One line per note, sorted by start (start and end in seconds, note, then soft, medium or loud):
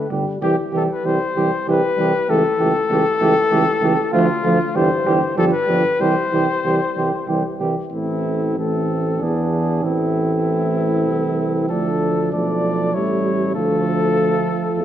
0.10 0.24 G1 medium
0.10 0.25 D3 soft
0.10 0.41 G3 soft
0.10 0.25 G4 soft
0.41 0.56 C2 soft
0.41 0.56 E3 medium
0.41 0.56 G3 medium
0.41 0.56 G4 medium
0.41 0.57 G4 medium
0.72 0.87 C2 soft
0.72 0.87 E3 medium
0.72 0.87 G3 soft
0.72 0.87 G4 soft
0.76 0.83 A4 medium
0.92 1.07 B4 medium
1.04 1.19 C2 medium
1.04 1.18 E3 soft
1.04 1.19 G3 soft
1.04 1.18 G4 soft
1.04 1.68 C5 medium
1.36 1.50 C2 soft
1.36 1.50 E3 soft
1.36 1.50 G3 soft
1.36 1.51 G4 medium
1.67 1.82 C2 medium
1.67 1.82 E3 soft
1.67 1.81 G3 medium
1.67 1.82 G4 medium
1.67 2.32 B4 medium
1.97 2.12 C2 medium
1.97 2.12 E3 soft
1.97 2.11 G3 medium
1.97 2.13 G4 medium
2.28 2.43 C#2 medium
2.28 2.44 E3 medium
2.28 2.42 A3 medium
2.28 2.43 G4 medium
2.28 4.13 A4 loud
2.58 2.74 C#2 medium
2.58 2.73 E3 medium
2.58 2.73 A3 soft
2.58 2.73 G4 medium
2.90 3.05 C#2 medium
2.90 3.04 E3 medium
2.90 3.04 A3 medium
2.90 3.05 G4 soft
3.21 3.35 C#2 medium
3.21 3.35 E3 medium
3.21 3.35 A3 medium
3.21 3.35 G4 medium
3.51 3.66 C#2 medium
3.51 3.66 E3 medium
3.51 3.66 A3 medium
3.51 3.65 G4 medium
3.82 3.96 C#2 medium
3.82 3.97 E3 medium
3.82 3.95 A3 medium
3.82 3.97 G4 medium
4.12 4.27 D2 medium
4.12 4.29 F3 medium
4.12 4.27 A3 medium
4.12 4.26 F4 medium
4.12 4.77 F4 medium
4.43 4.59 D2 medium
4.43 4.59 F3 medium
4.43 4.57 A3 medium
4.43 4.59 F4 medium
4.75 4.90 G1 medium
4.75 4.90 E3 medium
4.75 4.89 G3 medium
4.75 4.89 G4 medium
4.75 5.37 C5 medium
5.05 5.20 G1 medium
5.05 5.21 E3 medium
5.05 5.19 G3 medium
5.05 5.20 G4 medium
5.35 5.51 G1 medium
5.35 5.52 F3 medium
5.35 5.50 G3 medium
5.35 5.51 G4 medium
5.35 5.45 A4 medium
5.53 6.02 B4 medium
5.66 5.83 G1 medium
5.66 5.83 F3 soft
5.66 5.81 G3 soft
5.66 5.83 G4 soft
5.99 6.15 C2 medium
5.99 6.16 E3 soft
5.99 6.14 G3 medium
5.99 6.15 G4 medium
5.99 7.62 C5 medium
6.32 6.47 C2 soft
6.32 6.47 E3 soft
6.32 6.47 G3 soft
6.32 6.48 G4 soft
6.65 6.79 C2 soft
6.65 6.80 E3 soft
6.65 6.79 G3 soft
6.65 6.80 G4 soft
6.96 7.11 C2 soft
6.96 7.11 E3 soft
6.96 7.11 G3 soft
6.96 7.12 G4 soft
7.28 7.43 C2 soft
7.28 7.43 E3 soft
7.28 7.43 G3 soft
7.28 7.43 G4 soft
7.60 7.75 C2 soft
7.60 7.76 E3 soft
7.60 7.75 G3 soft
7.60 7.75 G4 soft
7.92 9.23 A1 soft
7.92 8.55 E3 soft
7.92 8.55 A3 soft
7.92 8.54 C4 soft
7.92 8.55 E4 medium
8.57 9.20 E3 soft
8.57 9.24 A3 soft
8.57 9.22 C4 soft
8.57 9.24 A4 soft
9.20 9.84 E2 soft
9.20 9.82 E3 soft
9.20 9.83 B3 soft
9.20 9.85 D4 soft
9.20 9.83 G#4 soft
9.82 11.08 A1 soft
9.82 11.71 E3 soft
9.82 11.67 A3 soft
9.82 11.72 C4 soft
9.82 11.67 E4 medium
11.06 11.70 C2 soft
11.69 12.33 D2 soft
11.69 12.32 F3 soft
11.69 12.34 A3 soft
11.69 12.34 D4 soft
11.69 12.31 A4 medium
12.32 12.94 B1 soft
12.32 12.97 F3 soft
12.32 12.94 A3 soft
12.32 12.96 D4 soft
12.32 12.96 D5 medium
12.94 13.57 A1 soft
12.94 13.55 G3 soft
12.94 13.54 A3 soft
12.94 13.55 E4 soft
12.94 13.55 C#5 medium
13.55 14.49 D2 medium
13.55 14.85 F3 soft
13.55 14.85 A3 medium
13.55 14.85 F4 soft
13.55 14.85 A4 medium
14.76 14.85 E2 medium